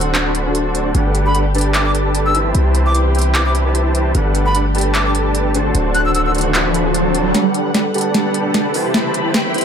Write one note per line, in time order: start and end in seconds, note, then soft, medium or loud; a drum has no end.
0.00 0.93 D1 medium
0.00 0.93 D3 medium
0.00 2.51 A3 medium
0.00 0.93 C4 medium
0.00 0.23 D4 medium
0.00 0.23 F#4 medium
0.00 0.93 F#4 medium
0.00 0.23 A4 medium
0.00 0.23 C5 medium
0.00 0.23 F#5 loud
0.00 closed hi-hat medium
0.15 clap medium
0.15 closed hi-hat medium
0.26 0.44 D4 medium
0.26 0.44 F#4 medium
0.26 0.44 A4 medium
0.26 0.44 C5 medium
0.26 0.44 B5 loud
0.35 closed hi-hat medium
0.46 0.93 D4 medium
0.46 0.93 F#4 medium
0.46 0.93 A4 medium
0.46 0.93 C5 medium
0.46 0.93 A5 medium
0.55 closed hi-hat medium
0.75 closed hi-hat medium
0.94 2.53 G1 medium
0.94 5.71 D4 medium
0.94 1.33 D4 medium
0.94 2.53 G4 medium
0.94 1.33 G4 medium
0.94 1.33 A4 medium
0.94 1.33 B4 medium
0.94 1.33 F#5 medium
0.94 closed hi-hat medium
1.15 closed hi-hat medium
1.26 1.38 B5 medium
1.35 1.45 D4 medium
1.35 1.45 G4 medium
1.35 1.45 A4 medium
1.35 1.45 B4 medium
1.35 1.45 F#5 medium
1.35 closed hi-hat medium
1.55 2.33 D4 loud
1.55 2.33 G4 medium
1.55 2.33 A4 medium
1.55 2.33 B4 medium
1.55 2.33 A5 loud
1.55 closed hi-hat soft
1.58 closed hi-hat medium
1.61 closed hi-hat medium
1.74 1.82 D6 medium
1.74 clap medium
1.74 closed hi-hat medium
1.86 1.91 D6 medium
1.95 closed hi-hat medium
2.15 closed hi-hat medium
2.26 2.38 E6 medium
2.35 2.93 E4 loud
2.35 2.93 G4 medium
2.35 2.93 B4 medium
2.35 2.93 C5 medium
2.35 2.93 A5 loud
2.35 closed hi-hat medium
2.55 4.13 C2 medium
2.55 4.13 E3 medium
2.55 4.13 C4 medium
2.55 4.13 G4 medium
2.55 closed hi-hat medium
2.75 closed hi-hat medium
2.86 2.98 D6 medium
2.95 3.13 E4 medium
2.95 3.13 G4 medium
2.95 3.13 B4 medium
2.95 3.13 C5 medium
2.95 3.13 G5 medium
2.95 closed hi-hat medium
3.15 3.43 E4 medium
3.15 3.43 G4 medium
3.15 3.43 B4 medium
3.15 3.43 C5 medium
3.15 3.43 G5 medium
3.15 closed hi-hat soft
3.19 closed hi-hat medium
3.21 closed hi-hat medium
3.35 3.42 D6 medium
3.35 clap medium
3.35 closed hi-hat medium
3.46 3.64 E4 medium
3.46 3.64 G4 medium
3.46 3.64 B4 medium
3.46 3.64 C5 medium
3.46 3.64 B5 loud
3.46 3.51 D6 medium
3.55 closed hi-hat medium
3.66 4.13 E4 medium
3.66 4.13 G4 medium
3.66 4.13 B4 medium
3.66 4.13 C5 medium
3.66 4.13 A5 medium
3.75 closed hi-hat medium
3.95 closed hi-hat medium
4.15 5.73 G1 medium
4.15 7.31 A3 medium
4.15 4.53 D4 medium
4.15 4.53 G4 medium
4.15 5.73 G4 medium
4.15 4.53 A4 medium
4.15 4.53 B4 medium
4.15 4.53 F#5 medium
4.15 closed hi-hat medium
4.15 riser medium
4.35 closed hi-hat medium
4.46 4.57 B5 medium
4.55 4.65 D4 medium
4.55 4.65 G4 medium
4.55 4.65 A4 medium
4.55 4.65 B4 medium
4.55 4.65 F#5 medium
4.55 closed hi-hat medium
4.75 5.53 D4 loud
4.75 5.53 G4 medium
4.75 5.53 A4 medium
4.75 5.53 B4 medium
4.75 5.53 A5 loud
4.75 closed hi-hat soft
4.78 closed hi-hat medium
4.81 closed hi-hat medium
4.95 5.02 D6 medium
4.95 clap medium
4.95 closed hi-hat medium
5.06 5.12 D6 medium
5.15 closed hi-hat medium
5.35 closed hi-hat medium
5.54 6.13 D4 medium
5.54 6.13 F#4 medium
5.54 6.13 A4 medium
5.54 6.13 C5 medium
5.54 6.13 A5 loud
5.54 closed hi-hat medium
5.75 7.33 D1 medium
5.75 7.33 D3 medium
5.75 7.33 C4 medium
5.75 7.33 F#4 medium
5.75 closed hi-hat medium
5.95 6.04 F#6 medium
5.95 closed hi-hat medium
6.05 6.13 E6 medium
6.15 6.33 D4 medium
6.15 6.33 F#4 medium
6.15 6.33 A4 medium
6.15 6.33 C5 medium
6.15 6.33 F#5 medium
6.15 6.22 E6 medium
6.15 closed hi-hat medium
6.26 6.32 E6 medium
6.35 6.63 D4 medium
6.35 6.63 F#4 medium
6.35 6.63 A4 medium
6.35 6.63 C5 medium
6.35 6.63 F#5 loud
6.35 closed hi-hat soft
6.38 closed hi-hat medium
6.41 closed hi-hat medium
6.54 clap medium
6.54 closed hi-hat medium
6.66 6.84 D4 medium
6.66 6.84 F#4 medium
6.66 6.84 A4 medium
6.66 6.84 C5 medium
6.66 6.84 B5 loud
6.74 closed hi-hat medium
6.86 7.33 D4 medium
6.86 7.33 F#4 medium
6.86 7.33 A4 medium
6.86 7.33 C5 medium
6.86 7.32 A5 medium
6.94 closed hi-hat medium
7.15 closed hi-hat medium
7.34 8.93 G3 medium
7.34 8.93 B3 medium
7.34 7.73 D4 medium
7.34 7.72 G4 medium
7.34 8.93 A4 medium
7.34 7.73 A4 medium
7.34 7.73 B4 medium
7.34 8.93 F#5 medium
7.34 7.73 F#5 medium
7.34 snare soft
7.34 closed hi-hat medium
7.34 riser medium
7.54 closed hi-hat medium
7.74 7.85 D4 medium
7.74 7.85 G4 medium
7.74 7.85 A4 medium
7.74 7.85 B4 medium
7.74 7.85 F#5 medium
7.74 snare soft
7.74 closed hi-hat medium
7.94 8.73 D4 loud
7.94 8.73 G4 medium
7.94 8.73 A4 medium
7.94 8.73 B4 medium
7.94 8.73 A5 loud
7.94 closed hi-hat soft
7.98 closed hi-hat medium
8.01 closed hi-hat medium
8.14 snare medium
8.14 closed hi-hat medium
8.34 closed hi-hat medium
8.54 snare medium
8.54 closed hi-hat medium
8.74 9.33 E4 loud
8.74 9.33 G4 medium
8.74 9.33 B4 medium
8.74 9.33 C5 medium
8.74 9.33 A5 loud
8.74 open hi-hat medium
8.94 9.65 G3 medium
8.94 9.65 C4 medium
8.94 9.65 E4 medium
8.94 9.65 B5 medium
8.94 snare medium
8.94 closed hi-hat medium
9.14 closed hi-hat medium
9.34 9.52 E4 medium
9.34 9.52 G4 medium
9.34 9.52 B4 medium
9.34 9.52 C5 medium
9.34 9.52 G5 medium
9.34 snare medium
9.34 closed hi-hat medium
9.54 9.65 E4 medium
9.54 9.65 G4 medium
9.54 9.65 B4 medium
9.54 9.65 C5 medium
9.54 9.65 G5 loud
9.54 closed hi-hat soft
9.58 closed hi-hat medium
9.61 closed hi-hat medium